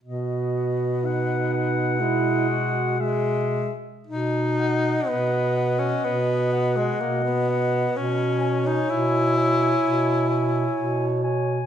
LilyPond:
<<
  \new Staff \with { instrumentName = "Clarinet" } { \time 4/4 \key b \major \tempo 4 = 62 dis''4 fis''8 fis''4. e''8 r8 | r8 fis''4 fis''4 fis''4 fis''8 | gis''8 gis''4 gis''4 gis''4 gis''8 | }
  \new Staff \with { instrumentName = "Alto saxophone" } { \time 4/4 \key b \major fis'4 dis'4 e'8 fis'8 gis'8 r8 | r8 dis''4 dis''4 dis''4 dis''8 | cis''8 cis''4 cis''4 cis''4 cis''8 | }
  \new Staff \with { instrumentName = "Tenor saxophone" } { \time 4/4 \key b \major b2 gis4 gis8 r8 | dis'4 b8. cis'16 b8. gis16 ais16 b8. | cis'8. dis'16 e'2~ e'8 r8 | }
  \new Staff \with { instrumentName = "Bass clarinet" } { \clef bass \time 4/4 \key b \major b,2.~ b,8 r8 | b,4 b,4 b,4 b,4 | b,4 b,4 b,4 b,4 | }
>>